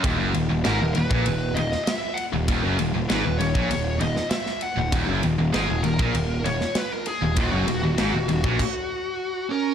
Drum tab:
CC |----------------|----------------|----------------|--------x-------|
RD |x-x-x-x-x-x-x-x-|x-x-x-x-x-x-x-x-|x-x-x-x-x-x-x-x-|x-x-x-x---------|
SD |----o------oo---|----o------ooo--|----o------oo---|----o-----------|
BD |o------o--------|o------o--------|o------o--------|o------oo-------|